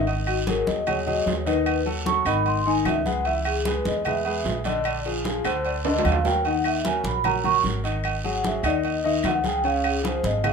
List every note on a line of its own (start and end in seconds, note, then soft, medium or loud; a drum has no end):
0.00 0.61 G#1 medium
0.07 0.40 D#3 medium
0.07 0.40 D#4 medium
0.07 0.40 D#5 medium
0.07 0.27 D#5 medium
0.07 high conga soft
0.07 low agogo medium
0.07 long guiro medium
0.27 0.47 F#4 medium
0.27 high conga soft
0.27 low agogo loud
0.27 claves medium
0.47 0.80 F#3 medium
0.47 0.80 F#4 medium
0.47 0.80 G#4 medium
0.47 0.67 A#4 medium
0.47 high conga loud
0.47 low agogo medium
0.47 short guiro medium
0.67 1.23 D#2 medium
0.67 0.86 D#5 loud
0.67 high conga medium
0.67 short guiro medium
0.87 1.03 F#3 medium
0.87 1.04 F#4 medium
0.87 1.04 G#4 medium
0.87 1.07 C#5 medium
0.87 high conga soft
0.87 low conga medium
0.87 low agogo loud
0.87 long guiro medium
0.87 claves medium
1.06 1.39 F#3 medium
1.06 1.39 F#4 medium
1.06 1.40 G#4 medium
1.06 1.26 D#5 loud
1.06 high conga soft
1.06 low conga medium
1.06 low agogo medium
1.26 2.20 D#2 medium
1.26 1.46 C#5 medium
1.26 high conga medium
1.26 low timbale medium
1.26 short guiro medium
1.46 1.79 D#3 medium
1.46 1.79 D#4 medium
1.46 1.84 B4 medium
1.46 1.79 D#5 medium
1.46 high conga medium
1.46 low agogo medium
1.46 short guiro medium
1.66 high conga soft
1.66 low agogo loud
1.66 long guiro medium
1.66 claves medium
1.86 2.02 F#3 medium
1.86 2.03 F#4 medium
1.86 2.03 A4 medium
1.86 high conga soft
1.86 low agogo medium
2.06 2.22 F#3 medium
2.06 2.22 F#4 medium
2.06 2.23 A4 medium
2.06 2.26 C#6 loud
2.06 high conga loud
2.06 short guiro medium
2.25 2.82 G#1 loud
2.25 2.59 D#3 medium
2.25 2.59 D#4 medium
2.25 2.59 D#5 medium
2.25 2.46 B5 loud
2.25 low agogo loud
2.25 short guiro medium
2.25 claves medium
2.46 2.66 C6 loud
2.46 high conga soft
2.46 low agogo medium
2.46 long guiro medium
2.66 2.99 D#3 medium
2.66 2.99 D#4 loud
2.66 2.99 D#5 loud
2.66 2.86 G#5 loud
2.66 high conga soft
2.85 3.79 C#2 medium
2.85 3.06 E5 medium
2.85 high conga medium
2.85 low timbale medium
2.85 low agogo loud
2.85 short guiro medium
2.85 claves medium
3.06 3.22 G#3 medium
3.06 3.22 G#4 medium
3.06 3.23 B4 medium
3.06 3.25 F#5 loud
3.06 high conga medium
3.06 short guiro medium
3.25 3.59 E3 medium
3.25 3.59 E4 medium
3.25 3.46 E5 medium
3.25 3.59 E5 medium
3.25 high conga soft
3.25 low agogo medium
3.25 long guiro medium
3.45 3.66 G#4 medium
3.45 high conga soft
3.45 low agogo loud
3.45 claves medium
3.65 3.99 G#3 medium
3.65 3.99 G#4 medium
3.65 3.99 B4 medium
3.65 3.86 B4 medium
3.65 high conga loud
3.65 low agogo medium
3.65 short guiro medium
3.85 4.42 E2 loud
3.85 4.06 D#5 medium
3.85 high conga loud
3.85 short guiro medium
4.05 4.23 G#3 medium
4.05 4.23 G#4 medium
4.05 4.23 B4 medium
4.05 4.63 E5 medium
4.05 high conga soft
4.05 low conga medium
4.05 low agogo loud
4.05 long guiro medium
4.05 claves medium
4.25 4.58 G#3 medium
4.25 4.59 G#4 medium
4.25 4.59 B4 medium
4.25 high conga soft
4.25 low agogo medium
4.44 5.39 A#1 medium
4.44 high conga medium
4.44 low timbale medium
4.44 short guiro medium
4.64 4.98 D3 medium
4.64 4.98 D4 medium
4.64 4.99 D5 medium
4.64 4.85 D#5 medium
4.64 high conga medium
4.64 low agogo medium
4.64 short guiro medium
4.84 5.06 D5 medium
4.84 high conga soft
4.84 low agogo loud
4.84 long guiro medium
4.84 claves medium
5.05 5.22 F3 medium
5.05 5.22 F4 medium
5.05 5.26 F4 medium
5.05 5.22 G#4 medium
5.05 high conga soft
5.05 low agogo medium
5.24 5.42 F3 medium
5.24 5.42 F4 medium
5.24 5.42 G#4 medium
5.24 5.45 G#4 medium
5.24 high conga loud
5.24 short guiro medium
5.44 6.01 D2 medium
5.44 5.78 D3 medium
5.44 5.78 D4 medium
5.44 5.65 C5 medium
5.44 5.78 D5 medium
5.44 low agogo loud
5.44 short guiro medium
5.44 claves medium
5.65 5.85 D5 medium
5.65 high conga soft
5.65 low agogo medium
5.65 long guiro medium
5.85 6.18 D3 loud
5.85 6.18 D4 medium
5.85 6.18 D5 loud
5.85 6.06 D#5 loud
5.85 high conga soft
5.85 high timbale medium
5.98 low timbale medium
6.05 6.99 D#2 medium
6.05 6.25 F5 medium
6.05 high conga medium
6.05 low agogo loud
6.05 short guiro medium
6.05 claves medium
6.12 low timbale medium
6.25 6.42 F#3 medium
6.25 6.41 F#4 medium
6.25 6.42 A#4 medium
6.25 6.45 G5 loud
6.25 high conga medium
6.25 low timbale medium
6.25 short guiro medium
6.45 6.78 D#3 medium
6.45 6.78 D#4 medium
6.45 6.78 D#5 medium
6.45 6.65 F#5 medium
6.45 high conga soft
6.45 low agogo medium
6.45 long guiro medium
6.64 6.85 E5 loud
6.64 high conga soft
6.64 low agogo loud
6.64 claves medium
6.85 7.18 F#3 medium
6.85 7.18 F#4 medium
6.85 7.18 A#4 medium
6.85 7.05 G#5 medium
6.85 high conga loud
6.85 low agogo medium
6.85 short guiro medium
7.04 7.60 A#1 loud
7.04 7.25 B5 loud
7.04 high conga loud
7.04 short guiro medium
7.24 7.41 F#3 medium
7.24 7.41 F#4 medium
7.24 7.41 A#4 medium
7.24 7.44 A#5 medium
7.24 high conga soft
7.24 low conga medium
7.24 low agogo loud
7.24 long guiro medium
7.24 claves medium
7.44 7.77 F#3 medium
7.44 7.77 F#4 medium
7.44 7.77 A#4 medium
7.44 7.57 C#6 loud
7.44 high conga soft
7.44 low conga medium
7.44 low agogo medium
7.64 8.58 G#1 medium
7.64 high conga medium
7.64 short guiro medium
7.83 8.17 D#3 medium
7.83 8.17 D#4 medium
7.83 8.17 D#5 medium
7.83 low agogo medium
7.83 short guiro medium
8.04 high conga soft
8.04 low agogo loud
8.04 long guiro medium
8.04 claves medium
8.24 8.41 F#3 medium
8.24 8.41 F#4 medium
8.24 8.41 G#4 medium
8.24 8.44 F#5 loud
8.24 high conga soft
8.24 low agogo medium
8.44 8.60 F#3 medium
8.44 8.61 F#4 medium
8.44 8.61 G#4 medium
8.44 8.65 E5 medium
8.44 high conga loud
8.44 short guiro medium
8.63 9.20 D#2 loud
8.63 8.97 D#3 medium
8.63 8.97 D#4 loud
8.63 8.85 D5 loud
8.63 8.97 D#5 medium
8.63 low agogo loud
8.63 short guiro medium
8.63 claves medium
8.83 9.05 D#5 medium
8.83 high conga soft
8.83 low agogo medium
8.83 long guiro medium
9.04 9.37 D#3 loud
9.04 9.37 D#4 medium
9.04 9.37 D#5 loud
9.04 9.24 E5 loud
9.04 high conga soft
9.23 10.18 C#2 medium
9.23 high conga medium
9.23 low timbale medium
9.23 low agogo loud
9.23 short guiro medium
9.23 claves medium
9.27 9.45 F#5 medium
9.44 9.60 F3 medium
9.44 9.61 F4 medium
9.44 9.61 G#4 medium
9.44 9.65 G5 loud
9.44 high conga medium
9.44 short guiro medium
9.64 9.97 C#3 medium
9.64 9.97 C#4 medium
9.64 9.97 C#5 medium
9.64 9.85 F5 loud
9.64 high conga soft
9.64 low agogo medium
9.64 long guiro medium
9.84 10.05 G#4 medium
9.84 high conga soft
9.84 low agogo loud
9.84 claves medium
10.03 10.36 F3 medium
10.03 10.36 F4 medium
10.03 10.36 G#4 medium
10.03 high conga loud
10.03 low agogo medium
10.03 short guiro medium
10.07 10.25 C5 medium
10.23 10.53 G#1 loud
10.23 10.44 D#5 loud
10.23 high conga loud
10.23 short guiro medium
10.44 10.53 F3 medium
10.44 10.53 F4 medium
10.44 10.53 G#4 medium
10.44 10.53 F5 medium
10.44 high conga soft
10.44 low conga medium
10.44 low agogo loud
10.44 long guiro medium
10.44 claves medium